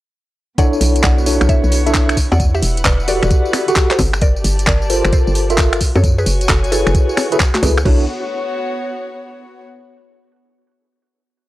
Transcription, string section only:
0.58 2.91 B3 medium
0.65 2.91 F#4 medium
1.22 2.91 C#5 medium
2.18 4.73 E4 medium
2.37 3.99 F#5 medium
2.61 3.99 B4 medium
3.99 5.81 G4 medium
4.22 5.81 D5 medium
4.42 5.81 A5 medium
5.81 7.85 F#4 loud
5.97 7.85 C#5 loud
6.16 7.85 G#5 medium
7.85 9.63 B3 medium
7.95 9.63 F#4 medium
8.02 9.63 C#5 medium

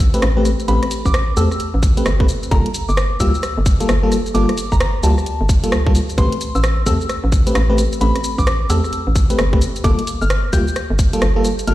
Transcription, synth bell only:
0.68 0.89 B5 loud
1.05 1.25 D6 loud
1.37 1.65 E6 medium
2.51 2.72 A#5 loud
2.89 3.08 D6 loud
3.20 3.48 E6 loud
4.34 4.55 D6 loud
4.72 4.91 A#5 loud
5.03 5.31 A5 medium
6.18 6.39 C6 loud
6.55 6.74 E6 medium
6.86 7.14 E6 medium
8.01 8.22 B5 loud
8.38 8.58 D6 loud
8.70 8.97 E6 medium
9.84 10.05 D6 loud
10.21 10.41 F6 loud
10.53 10.81 G6 medium
11.67 11.74 F6 loud

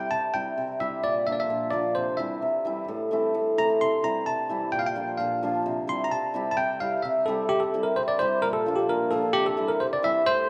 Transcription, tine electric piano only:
0.00 0.12 G5 medium
0.11 0.35 A5 medium
0.34 0.82 G5 medium
0.80 1.02 E5 medium
1.04 1.25 D5 medium
1.27 1.34 E5 medium
1.33 1.40 D5 medium
1.40 1.74 E5 medium
1.71 1.96 D5 medium
1.95 2.17 C5 medium
2.17 2.84 E5 medium
3.58 3.69 A#5 medium
3.81 4.05 C6 medium
4.04 4.28 A#5 medium
4.26 4.70 A5 medium
4.72 4.80 G5 loud
4.79 4.87 F5 medium
4.86 5.20 G5 medium
5.18 5.62 F5 medium
5.89 6.04 C6 medium
6.04 6.12 A#5 medium
6.11 6.50 A5 medium
6.51 6.58 A5 medium
6.57 6.79 G5 loud
6.80 7.05 F5 medium
7.02 7.25 E5 medium
7.26 7.51 A4 medium
7.49 7.62 G4 loud
7.60 7.85 A4 medium
7.83 7.96 A#4 medium
7.96 8.02 C5 medium
8.08 8.20 D5 medium
8.19 8.43 C5 loud
8.42 8.48 A#4 loud
8.53 8.78 A4 medium
8.76 8.87 G4 medium
8.89 9.13 A#4 medium
9.11 9.35 A4 medium
9.33 9.46 G4 loud
9.46 9.71 A4 medium
9.68 9.81 A#4 medium
9.80 9.86 C5 medium
9.93 10.05 D5 medium
10.04 10.28 E5 loud
10.26 10.49 C5 loud

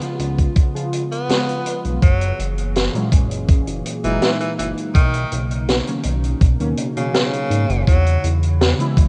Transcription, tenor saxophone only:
1.12 1.85 B3 loud
2.03 2.47 F#3 medium
4.04 4.37 E3 medium
4.41 4.52 E3 medium
4.59 4.71 E3 medium
4.95 5.39 D#3 medium
6.97 7.87 C#3 loud
7.88 8.32 F#3 medium

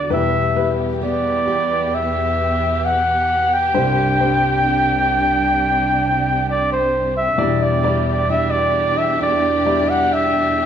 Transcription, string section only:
0.11 3.71 E2 medium
0.11 3.71 E3 medium
0.11 3.71 B3 medium
0.11 7.34 G4 medium
3.73 7.34 C2 medium
3.73 7.34 C3 medium
3.73 7.34 D4 medium
7.37 10.66 E2 medium
7.37 10.66 B2 medium
7.37 10.66 D4 medium
7.37 10.66 G4 medium

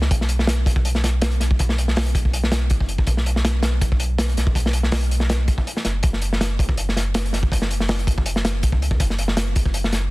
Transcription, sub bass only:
0.11 1.39 B1 loud
1.41 1.58 B1 medium
1.60 2.72 B1 loud
2.71 3.06 F#1 loud
3.07 4.36 B1 loud
4.37 4.54 B1 medium
4.55 5.47 B1 loud
5.85 6.02 F#1 medium
6.04 7.32 F#1 loud
7.33 7.50 F#1 medium
7.52 8.65 F#1 loud
8.63 8.99 C#2 loud
9.00 10.11 F#1 loud

